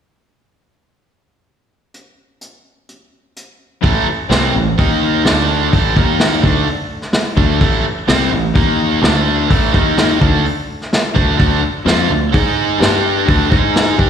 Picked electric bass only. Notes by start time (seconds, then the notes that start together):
3.84 A1
4.06 muted picked electric bass stroke
4.30 C2
4.55 A1
4.79 D#2
5.25 D2
5.73 A1
5.97 D#2
6.43 D2
7.37 D2
7.61 A1
7.84 muted picked electric bass stroke
8.08 C2
8.32 A1
8.55 D#2
9.02 D2
9.51 A1
9.74 D#2
10.21 D2
11.16 D2
11.39 D2
11.63 muted picked electric bass stroke
11.86 F2
12.10 D2
12.34 G#2
12.80 G2
13.28 D2
13.51 G#2
13.99 G2